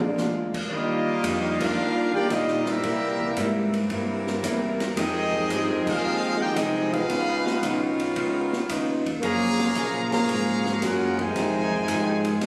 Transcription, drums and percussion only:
0.00 mid tom medium
0.18 snare medium
0.18 hi-hat pedal medium
0.54 kick medium
0.54 crash medium
0.71 kick soft
1.24 kick soft
1.24 hi-hat pedal medium
1.24 ride medium
1.60 kick loud
1.60 crash loud
2.14 kick soft
2.30 kick soft
2.30 hi-hat pedal medium
2.30 ride medium
2.48 snare soft
2.66 snare medium
2.66 ride medium
2.83 kick soft
2.83 ride medium
3.20 kick medium
3.36 hi-hat pedal medium
3.36 ride medium
3.73 ride medium
3.90 kick soft
3.90 ride medium
4.27 snare soft
4.43 kick soft
4.43 hi-hat pedal medium
4.43 ride medium
4.80 snare soft
4.80 ride medium
4.97 kick soft
4.97 snare soft
4.97 ride medium
5.34 kick medium
5.50 kick soft
5.50 hi-hat pedal medium
5.50 ride medium
5.87 kick loud
5.87 crash loud
6.56 kick soft
6.56 hi-hat pedal medium
6.56 ride medium
6.93 kick medium
6.93 ride medium
7.09 kick soft
7.09 ride medium
7.47 snare medium
7.63 kick soft
7.63 hi-hat pedal medium
7.63 ride medium
8.00 ride medium
8.16 kick soft
8.16 ride medium
8.53 snare medium
8.69 kick soft
8.69 hi-hat pedal medium
8.69 ride medium
9.06 kick medium
9.06 ride medium
9.22 kick soft
9.22 ride medium
9.59 snare medium
9.75 kick soft
9.75 hi-hat pedal medium
9.75 ride medium
10.12 snare medium
10.12 ride medium
10.29 kick soft
10.29 ride medium
10.66 snare medium
10.82 kick soft
10.82 snare soft
10.82 hi-hat pedal medium
10.82 ride medium
11.19 kick medium
11.19 ride medium
11.35 kick soft
11.35 snare soft
11.35 ride medium
11.72 kick medium
11.88 kick soft
11.88 hi-hat pedal medium
11.88 ride medium
12.24 ride medium
12.41 kick soft
12.41 snare soft
12.41 ride medium

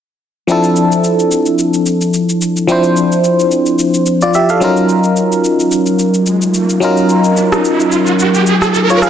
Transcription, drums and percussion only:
0.49 shaker medium
0.64 shaker soft
0.76 shaker medium
0.92 shaker medium
1.04 shaker medium
1.19 shaker soft
1.31 shaker medium
1.46 shaker soft
1.59 shaker medium
1.74 shaker soft
1.86 shaker medium
2.01 shaker medium
2.14 shaker medium
2.29 shaker medium
2.42 shaker loud
2.57 shaker soft
2.69 shaker medium
2.84 shaker soft
2.97 shaker medium
3.12 shaker medium
3.24 shaker medium
3.40 shaker soft
3.52 shaker medium
3.66 shaker soft
3.79 shaker medium
3.94 shaker soft
4.06 shaker medium
4.22 shaker medium
4.34 shaker medium
4.49 shaker medium
4.62 shaker loud
4.77 shaker soft
4.89 shaker medium
5.04 shaker soft
5.17 shaker medium
5.32 shaker medium
5.44 shaker medium
5.60 shaker soft
5.72 shaker medium
5.86 shaker soft
5.99 shaker medium
6.14 shaker soft
6.27 shaker medium
6.42 shaker medium
6.54 shaker medium
6.70 shaker medium
6.82 shaker loud
6.97 shaker soft
7.09 shaker medium
7.24 shaker soft
7.37 shaker medium
7.52 cross-stick medium
7.52 shaker medium
7.65 shaker medium
7.80 shaker soft
7.92 shaker medium
8.07 shaker soft
8.19 shaker medium
8.34 shaker soft
8.47 shaker medium
8.62 cross-stick medium
8.62 shaker medium
8.75 shaker medium
8.90 shaker medium
9.02 cross-stick medium
9.02 shaker loud

